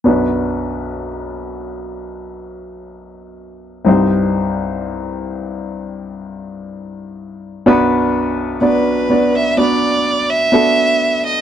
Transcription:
X:1
M:4/4
L:1/16
Q:1/4=63
K:Bphr
V:1 name="Violin"
z16 | z16 | z4 B3 e d3 e4 _e |]
V:2 name="Grand piano"
[B,DFB]16 | [C_EGc]16 | [B,DFB]4 [B,DFd]2 [B,DFd]2 [B,DFB]4 [B,DFA]4 |]
V:3 name="Grand piano" clef=bass
[B,,,F,,]16 | [C,,G,,]16 | [B,,,F,,]16 |]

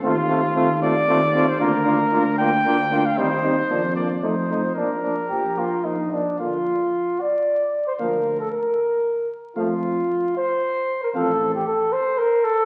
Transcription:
X:1
M:3/4
L:1/16
Q:1/4=114
K:Bb
V:1 name="Trumpet"
F6 d4- d c | B6 g4- g f | c6 d2 c4 | B8 z4 |
f2 z8 z2 | f2 z8 z2 | f2 z8 z2 | f2 z8 z2 |]
V:2 name="Flugelhorn"
F2 F2 F2 F2 F2 F2 | F2 F2 F2 F2 F2 F2 | E2 E2 D2 D2 E2 E2 | D2 D2 G2 F2 E2 D2 |
F6 d4- d c | B3 A B6 z2 | F6 c4- c B | A3 G A2 c2 B2 A2 |]
V:3 name="French horn"
C2 C2 C2 C2 C2 C2 | D2 D2 D2 D2 D2 D2 | C2 C2 B,2 B,2 A,2 A,2 | B,2 B,2 B,2 B,2 B,2 B,2 |
B,2 z8 z2 | B,2 z8 z2 | A,2 z8 z2 | C2 z8 z2 |]
V:4 name="Trombone" clef=bass
A,2 A,2 A,2 A,2 A,2 A,2 | B,2 B,2 B,2 B,2 B,2 B,2 | G,2 G,2 F,2 F,2 F,2 F,2 | F,2 F,2 F,2 F,2 F,2 F,2 |
D,2 z8 z2 | F,2 z8 z2 | F,2 z8 z2 | F,2 z8 z2 |]
V:5 name="Tuba" clef=bass
E,,4 E,,4 E,,4 | D,,4 D,,4 D,,4 | E,,4 F,,4 F,,4 | B,,,4 B,,,4 B,,,4 |
B,,,4 z8 | D,,4 z8 | F,,4 z8 | A,,,4 z8 |]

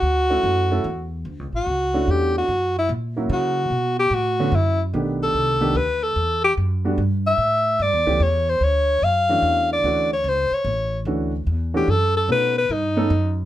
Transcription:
X:1
M:3/4
L:1/16
Q:"Swing" 1/4=147
K:D
V:1 name="Alto saxophone"
F8- F2 z2 | z2 F6 G2 F2- | F2 E2 z4 F4- | F2 G2 F4 E2 z2 |
z2 A6 B2 A2- | A2 G2 z6 e2- | e4 d4 c2 =c2 | c4 =f6 d2- |
d2 c2 =c2 ^c4- c z | z6 G2 A2 A2 | B2 B2 ^D6 z2 |]
V:2 name="Grand piano"
z2 [A,CEF]4 [A,CEA]2 z4 | z6 [A,CDEF]6 | z6 [F,^A,CEF]6 | z6 [D,A,B,CF]2 z4 |
[^D,A,B,=DG]6 [^D,A,B,=DG]2 z4 | z6 [G,A,B,DF]2 z4 | z6 [E,A,B,CG]2 z4 | z6 [E,A,CDF]6 |
[E,A,CDF]2 z8 z2 | [E,A,CDF]2 z4 [E,A,CDF]2 z4 | [A,B,C^DF]2 z4 [A,B,CDA]2 z4 |]
V:3 name="Upright bass" clef=bass
D,,4 F,,4 E,,4 | (3D,,2 C,,2 A,,,2 C,,4 E,,4 | F,,4 ^A,,4 C,4 | B,,4 A,,4 F,,4 |
B,,,4 =C,,4 D,,4 | E,,4 F,,4 G,,4 | A,,4 (3G,,2 E,,2 C,,2 E,,4 | D,,4 F,,4 E,,4 |
D,,4 C,,2 z2 A,,,4 | D,,4 E,,4 F,,4 | B,,4 G,,4 F,,4 |]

